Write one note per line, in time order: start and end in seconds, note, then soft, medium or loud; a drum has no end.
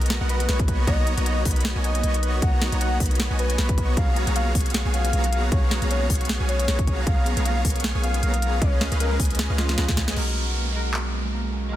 0.00 0.19 B1 loud
0.00 0.35 A#3 medium
0.00 0.18 B3 medium
0.00 0.48 C#4 loud
0.00 0.18 F#4 medium
0.00 0.20 F#4 medium
0.00 2.18 G#4 loud
0.00 0.18 A#4 medium
0.00 0.18 D#5 medium
0.00 0.18 A#5 medium
0.00 closed hi-hat soft
0.06 closed hi-hat medium
0.10 0.39 G#3 loud
0.10 snare loud
0.10 closed hi-hat medium
0.21 0.47 B1 loud
0.21 0.47 B3 medium
0.21 2.64 F#4 medium
0.21 0.47 F#4 medium
0.21 0.47 A#4 medium
0.21 0.47 D#5 medium
0.21 0.47 F#5 medium
0.29 0.55 B3 medium
0.29 0.89 B4 loud
0.29 closed hi-hat medium
0.40 0.58 G#3 medium
0.40 closed hi-hat medium
0.49 0.86 B1 loud
0.49 0.74 A#3 medium
0.49 0.85 B3 medium
0.49 0.85 F#4 medium
0.49 0.85 C#5 medium
0.49 0.85 D#5 medium
0.49 0.85 C#6 loud
0.49 snare medium
0.49 closed hi-hat medium
0.59 0.74 G#3 medium
0.59 kick loud
0.59 closed hi-hat medium
0.68 0.85 B4 loud
0.68 kick medium
0.68 closed hi-hat medium
0.79 0.98 A#4 medium
0.87 1.15 B1 loud
0.87 1.17 A#3 loud
0.87 1.15 B3 medium
0.87 1.15 F#4 medium
0.87 1.15 C#5 medium
0.87 1.15 D#5 medium
0.87 1.08 D#5 loud
0.87 1.15 A#5 loud
0.87 kick loud
0.87 closed hi-hat medium
0.98 1.32 A#4 medium
1.07 1.84 D#4 medium
1.07 closed hi-hat medium
1.17 1.44 B1 loud
1.17 1.32 A#3 medium
1.17 1.43 B3 medium
1.17 1.43 F#4 medium
1.17 1.43 C#5 medium
1.17 1.43 D#5 medium
1.17 1.43 A#5 medium
1.17 closed hi-hat medium
1.26 1.43 B3 medium
1.26 1.42 D#5 loud
1.26 closed hi-hat medium
1.37 1.51 A#3 medium
1.45 1.73 B1 loud
1.45 1.73 B3 medium
1.45 1.62 B4 loud
1.45 1.73 D#5 medium
1.45 1.73 B5 medium
1.45 kick medium
1.45 open hi-hat medium
1.51 closed hi-hat medium
1.56 1.75 A#4 medium
1.56 closed hi-hat soft
1.61 closed hi-hat medium
1.65 snare loud
1.75 2.02 B1 loud
1.75 2.01 B3 medium
1.75 2.01 F#4 medium
1.75 2.09 A#4 medium
1.75 2.01 C#5 medium
1.75 2.01 D#5 medium
1.75 2.01 G#5 medium
1.84 2.61 D#4 medium
1.84 2.35 D#5 loud
1.84 closed hi-hat medium
1.95 2.09 A#3 medium
1.95 closed hi-hat medium
2.03 2.40 B1 loud
2.03 2.20 B3 medium
2.03 2.40 B3 medium
2.03 2.40 F#4 medium
2.03 2.40 C#5 medium
2.03 2.40 D#5 medium
2.03 2.40 C#6 loud
2.03 closed hi-hat medium
2.14 2.29 A#3 medium
2.14 closed hi-hat medium
2.23 2.39 B4 loud
2.23 closed hi-hat medium
2.33 2.53 A#4 medium
2.42 2.70 B1 loud
2.42 2.72 A#3 loud
2.42 2.70 B3 medium
2.42 2.70 F#4 medium
2.42 2.70 C#5 medium
2.42 2.70 D#5 medium
2.42 2.63 F#5 loud
2.42 2.70 A#5 loud
2.42 kick loud
2.42 closed hi-hat medium
2.53 2.87 A#4 medium
2.61 5.32 D#4 medium
2.61 snare medium
2.61 closed hi-hat medium
2.72 2.99 B1 loud
2.72 2.87 A#3 medium
2.72 2.98 B3 medium
2.72 2.98 F#4 medium
2.72 2.98 C#5 medium
2.72 2.98 D#5 medium
2.72 2.98 A#5 medium
2.72 closed hi-hat medium
2.81 2.98 B3 medium
2.81 2.97 F#5 loud
2.81 closed hi-hat medium
2.92 3.06 A#3 medium
3.00 3.28 B1 loud
3.00 3.28 B3 medium
3.00 3.28 F#4 medium
3.00 3.17 B4 loud
3.00 3.28 C#5 medium
3.00 3.28 D#5 medium
3.00 kick medium
3.00 open hi-hat medium
3.06 closed hi-hat medium
3.11 3.30 A#4 medium
3.11 closed hi-hat soft
3.15 closed hi-hat medium
3.20 3.45 A#3 loud
3.20 snare loud
3.20 closed hi-hat medium
3.30 3.57 B1 loud
3.30 3.56 B3 medium
3.30 3.56 F#4 medium
3.30 3.45 A#4 medium
3.30 3.56 C#5 medium
3.30 3.56 D#5 medium
3.30 3.56 G#5 medium
3.39 3.49 B3 medium
3.39 3.90 B4 loud
3.39 closed hi-hat medium
3.50 3.64 B3 medium
3.50 closed hi-hat medium
3.58 3.95 B1 loud
3.58 3.69 A#3 medium
3.58 3.95 B3 medium
3.58 3.95 F#4 medium
3.58 3.95 C#5 medium
3.58 3.95 D#5 medium
3.58 3.95 C#6 loud
3.58 snare medium
3.58 closed hi-hat medium
3.69 kick loud
3.69 closed hi-hat medium
3.78 3.94 A#3 loud
3.78 kick medium
3.78 closed hi-hat medium
3.88 4.42 B3 medium
3.97 4.25 B1 loud
3.97 4.26 G#3 loud
3.97 4.25 B3 medium
3.97 4.25 F#4 medium
3.97 4.25 G#4 medium
3.97 4.25 C#5 medium
3.97 4.17 F5 loud
3.97 4.25 F5 medium
3.97 4.25 A#5 loud
3.97 kick loud
3.97 closed hi-hat medium
4.08 4.65 F#4 medium
4.16 4.93 C#4 medium
4.16 closed hi-hat medium
4.27 4.53 B1 loud
4.27 4.45 G#3 medium
4.27 4.53 B3 medium
4.27 4.53 F#4 medium
4.27 4.53 G#4 medium
4.27 4.53 C#5 medium
4.27 4.53 F5 medium
4.27 4.53 A#5 medium
4.27 closed hi-hat medium
4.36 5.13 A#3 medium
4.36 4.51 F5 loud
4.36 closed hi-hat medium
4.46 4.73 G#3 medium
4.55 4.83 B1 medium
4.55 4.83 B3 medium
4.55 4.83 F#4 medium
4.55 5.32 G#4 loud
4.55 4.83 G#4 medium
4.55 4.83 C#5 medium
4.55 4.83 F5 medium
4.55 4.83 C#6 medium
4.55 kick medium
4.55 open hi-hat medium
4.60 closed hi-hat medium
4.66 4.85 F#4 medium
4.66 closed hi-hat soft
4.70 closed hi-hat medium
4.74 5.03 G#3 loud
4.74 snare loud
4.74 closed hi-hat medium
4.85 5.11 B1 loud
4.85 5.11 B3 medium
4.85 5.43 F#4 medium
4.85 5.11 F#4 medium
4.85 5.11 G#4 medium
4.85 5.11 C#5 medium
4.85 5.11 F5 medium
4.85 5.11 G#5 medium
4.94 5.71 C#4 medium
4.94 5.45 F5 loud
4.94 closed hi-hat medium
5.04 5.23 G#3 medium
5.04 closed hi-hat medium
5.13 5.50 B1 loud
5.13 5.90 A#3 medium
5.13 5.50 B3 medium
5.13 5.50 F#4 medium
5.13 5.50 G#4 medium
5.13 5.50 C#5 medium
5.13 5.50 F5 medium
5.13 5.50 A#5 loud
5.13 closed hi-hat medium
5.24 5.51 G#3 medium
5.24 closed hi-hat medium
5.32 6.09 G#4 loud
5.32 closed hi-hat medium
5.43 5.62 F#4 medium
5.52 5.80 B1 loud
5.52 5.72 C#5 loud
5.52 kick loud
5.52 closed hi-hat medium
5.63 6.20 F#4 medium
5.71 6.48 C#4 medium
5.71 snare medium
5.71 closed hi-hat medium
5.82 6.08 B1 loud
5.82 6.00 G#3 medium
5.82 6.08 B3 medium
5.82 6.08 F#4 medium
5.82 6.08 G#4 medium
5.82 6.08 C#5 medium
5.82 6.08 F5 medium
5.82 6.08 A#5 medium
5.82 closed hi-hat medium
5.90 6.68 A#3 medium
5.90 6.06 C#5 medium
5.90 closed hi-hat medium
6.01 6.28 G#3 medium
6.10 6.38 B1 medium
6.10 6.37 B3 medium
6.10 6.87 G#4 loud
6.10 kick medium
6.10 open hi-hat medium
6.15 closed hi-hat medium
6.21 6.40 F#4 medium
6.21 closed hi-hat soft
6.25 closed hi-hat medium
6.29 6.58 G#3 loud
6.29 snare loud
6.40 6.66 B1 loud
6.40 6.66 B3 medium
6.40 6.66 F#4 medium
6.40 6.98 F#4 medium
6.40 6.66 G#4 medium
6.40 6.66 C#5 medium
6.40 6.66 F5 medium
6.40 6.66 G#5 medium
6.49 7.26 C#4 medium
6.49 7.00 C#5 loud
6.49 closed hi-hat medium
6.59 6.77 G#3 medium
6.59 closed hi-hat medium
6.68 7.05 B1 loud
6.68 7.45 A#3 medium
6.68 7.05 B3 medium
6.68 7.05 F#4 medium
6.68 7.05 G#4 medium
6.68 7.05 C#5 medium
6.68 7.05 F5 medium
6.68 7.05 A#5 loud
6.68 snare medium
6.68 closed hi-hat medium
6.79 7.05 G#3 medium
6.79 kick loud
6.79 closed hi-hat medium
6.87 7.17 G#4 loud
6.87 kick medium
6.87 closed hi-hat medium
6.98 8.78 F#4 medium
7.07 7.35 B1 loud
7.07 7.36 G#3 loud
7.07 7.34 B3 loud
7.07 7.34 G#4 medium
7.07 7.34 C#5 medium
7.07 7.27 F5 loud
7.07 7.34 F5 medium
7.07 7.34 A#5 loud
7.07 kick loud
7.07 closed hi-hat medium
7.17 7.75 G#4 medium
7.26 8.03 C#4 medium
7.26 closed hi-hat medium
7.37 7.63 B1 loud
7.37 7.55 G#3 medium
7.37 7.63 B3 medium
7.37 7.63 G#4 medium
7.37 7.63 C#5 medium
7.37 7.63 F5 medium
7.37 7.63 A#5 medium
7.37 closed hi-hat medium
7.45 8.22 A#3 medium
7.45 7.61 F5 loud
7.45 closed hi-hat medium
7.56 7.83 G#3 medium
7.65 7.93 B1 medium
7.65 7.92 B3 medium
7.65 7.92 G#4 medium
7.65 8.42 A#4 loud
7.65 7.92 C#5 medium
7.65 7.92 F5 medium
7.65 7.92 C#6 medium
7.65 kick medium
7.65 open hi-hat loud
7.70 closed hi-hat medium
7.76 7.95 G#4 medium
7.76 closed hi-hat medium
7.80 closed hi-hat medium
7.84 8.13 G#3 loud
7.84 snare loud
7.84 closed hi-hat medium
7.95 8.21 B1 loud
7.95 8.21 B3 medium
7.95 8.21 G#4 medium
7.95 8.53 G#4 medium
7.95 8.21 C#5 medium
7.95 8.21 F5 medium
7.95 8.21 G#5 medium
8.03 8.81 C#4 medium
8.03 8.63 F5 loud
8.03 closed hi-hat medium
8.14 8.32 G#3 medium
8.14 closed hi-hat medium
8.23 8.63 B1 loud
8.23 9.06 A#3 medium
8.23 8.59 B3 medium
8.23 8.59 G#4 medium
8.23 8.59 C#5 medium
8.23 8.60 F5 medium
8.23 8.60 A#5 loud
8.23 closed hi-hat medium
8.34 8.60 G#3 medium
8.34 closed hi-hat medium
8.42 9.06 A#4 loud
8.42 closed hi-hat medium
8.53 9.19 G#4 medium
8.61 8.90 C#2 loud
8.61 8.90 G#3 loud
8.61 8.89 C#4 medium
8.61 8.89 G#4 medium
8.61 8.89 B4 medium
8.61 8.82 C#5 loud
8.61 8.89 D#5 medium
8.61 8.89 F5 loud
8.61 kick loud
8.61 closed hi-hat medium
8.72 9.30 F4 medium
8.81 9.58 C#4 medium
8.81 snare medium
8.81 closed hi-hat medium
8.92 9.18 C#2 loud
8.92 9.10 G#3 medium
8.92 9.18 C#4 medium
8.92 9.18 G#4 medium
8.92 9.18 B4 medium
8.92 9.18 D#5 medium
8.92 9.18 F5 medium
8.92 closed hi-hat medium
9.00 9.77 B3 medium
9.00 9.16 A#4 loud
9.00 closed hi-hat medium
9.11 9.38 G#3 medium
9.20 9.48 C#2 medium
9.20 9.47 C#4 medium
9.20 9.47 G#4 medium
9.20 10.74 G#4 loud
9.20 9.47 B4 medium
9.20 9.47 D#5 medium
9.20 9.47 G#5 medium
9.20 kick medium
9.20 open hi-hat loud
9.25 closed hi-hat medium
9.30 9.49 F4 medium
9.30 closed hi-hat medium
9.35 closed hi-hat medium
9.39 9.68 G#3 loud
9.39 snare loud
9.39 closed hi-hat medium
9.50 9.76 C#2 loud
9.50 9.76 C#4 medium
9.50 10.33 F4 medium
9.50 9.76 G#4 medium
9.50 9.76 B4 medium
9.50 9.76 D#5 medium
9.50 9.76 F5 medium
9.58 9.97 C#4 medium
9.58 10.09 F4 loud
9.58 snare medium
9.58 closed hi-hat medium
9.69 9.87 G#3 medium
9.69 snare medium
9.69 closed hi-hat medium
9.78 9.86 C#2 loud
9.78 10.35 B3 medium
9.78 9.86 C#4 medium
9.78 9.86 G#4 medium
9.78 9.86 B4 medium
9.78 9.86 D#5 medium
9.78 9.86 A#5 medium
9.78 snare medium
9.78 closed hi-hat medium
9.88 10.15 C#2 loud
9.88 10.14 C#4 medium
9.88 10.14 G#4 medium
9.88 10.14 B4 medium
9.88 10.14 G#5 medium
9.88 kick loud
9.88 snare medium
9.88 closed hi-hat medium
9.97 11.76 C#4 loud
9.97 kick medium
9.97 snare loud
9.97 closed hi-hat medium
10.08 10.15 G#3 medium
10.08 snare medium
10.14 11.76 B1 medium
10.14 10.71 G#3 medium
10.14 10.45 G#3 medium
10.14 10.72 B3 medium
10.14 10.73 F#4 medium
10.14 crash medium
10.14 downlifter medium
10.18 10.73 A#4 medium
10.27 10.85 F#4 medium
10.36 10.61 B3 medium
10.47 10.65 G#3 medium
10.55 11.19 A#3 medium
10.66 10.93 G#3 medium
10.72 11.68 G#3 medium
10.72 11.70 F#4 medium
10.72 11.51 G#4 loud
10.72 11.70 A#4 medium
10.85 11.04 F#4 medium
10.94 11.23 G#3 medium
10.94 clap medium
11.05 11.62 F#4 medium
11.13 11.39 B3 medium
11.24 11.42 G#3 medium
11.33 11.76 A#3 medium
11.43 11.70 G#3 medium
11.52 11.76 G#4 medium
11.63 11.76 F#4 medium
11.69 11.76 G#3 medium
11.69 11.76 F#4 medium